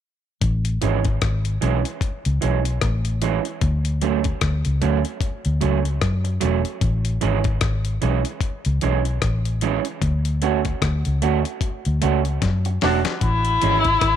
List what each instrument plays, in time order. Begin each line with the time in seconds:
0.42 fingered electric bass A1, kick, closed hi-hat
0.65 closed hi-hat
0.81 fingered electric bass G#1, clean electric guitar E3 G#3 C#4, closed hi-hat
1.05 kick, closed hi-hat
1.22 fingered electric bass G#1, kick, cross-stick, closed hi-hat
1.45 closed hi-hat
1.61 fingered electric bass B1, clean electric guitar E3 G#3 C#4, closed hi-hat
1.85 closed hi-hat
2.01 kick, closed hi-hat
2.25 fingered electric bass C#2, closed hi-hat
2.41 fingered electric bass B1, clean electric guitar E3 G#3 C#4, closed hi-hat
2.65 closed hi-hat
2.82 fingered electric bass A1, kick, cross-stick, closed hi-hat
3.05 closed hi-hat
3.22 clean electric guitar E3 G#3 C#4, closed hi-hat
3.45 closed hi-hat
3.61 fingered electric bass D2, kick, closed hi-hat
3.85 closed hi-hat
4.01 clean electric guitar F#3 A3 C#4, closed hi-hat
4.24 kick, closed hi-hat
4.41 fingered electric bass D2, kick, cross-stick, closed hi-hat
4.65 fingered electric bass C#2, closed hi-hat
4.82 fingered electric bass D2, clean electric guitar F#3 A3 C#4, closed hi-hat
5.05 closed hi-hat
5.21 kick, closed hi-hat
5.45 fingered electric bass D2, closed hi-hat
5.61 fingered electric bass C#2, clean electric guitar F#3 A3 C#4, closed hi-hat
5.85 closed hi-hat
6.01 fingered electric bass F#2, kick, cross-stick, closed hi-hat
6.24 muted clean electric guitar stroke, closed hi-hat
6.40 fingered electric bass E1, clean electric guitar F#3 A3 C#4, closed hi-hat
6.65 closed hi-hat
6.81 fingered electric bass A1, kick, closed hi-hat
7.05 closed hi-hat
7.21 fingered electric bass G#1, clean electric guitar E3 G#3 C#4, closed hi-hat
7.44 kick, closed hi-hat
7.61 fingered electric bass G#1, kick, cross-stick, closed hi-hat
7.85 closed hi-hat
8.02 fingered electric bass B1, clean electric guitar E3 G#3 C#4, closed hi-hat
8.25 closed hi-hat
8.41 kick, closed hi-hat
8.65 fingered electric bass C#2, closed hi-hat
8.81 fingered electric bass B1, clean electric guitar E3 G#3 C#4, closed hi-hat
9.05 closed hi-hat
9.22 fingered electric bass A1, kick, cross-stick, closed hi-hat
9.45 closed hi-hat
9.61 clean electric guitar E3 G#3 C#4, closed hi-hat
9.85 closed hi-hat
10.02 fingered electric bass D2, kick, closed hi-hat
10.25 closed hi-hat
10.42 clean electric guitar A3 C#4 F#4, closed hi-hat
10.65 kick, closed hi-hat
10.82 fingered electric bass D2, kick, cross-stick, closed hi-hat
11.05 fingered electric bass C#2, closed hi-hat
11.22 fingered electric bass D2, clean electric guitar A3 C#4 F#4, closed hi-hat
11.45 closed hi-hat
11.61 kick, closed hi-hat
11.85 fingered electric bass D2, closed hi-hat
12.02 fingered electric bass C#2, clean electric guitar A3 C#4 F#4, closed hi-hat
12.25 closed hi-hat
12.42 fingered electric bass F#2, kick, snare, closed hi-hat
12.65 muted clean electric guitar stroke, closed hi-hat
12.81 fingered electric bass E1, clean electric guitar A3 C#4 F#4, viola D4, snare, open hi-hat
13.05 snare, closed hi-hat
13.21 fingered electric bass A1, viola E4, kick, closed hi-hat
13.45 closed hi-hat
13.62 fingered electric bass G#1, clean electric guitar E3 G#3 C#4, closed hi-hat
13.84 kick, closed hi-hat
14.01 fingered electric bass G#1, kick, cross-stick, closed hi-hat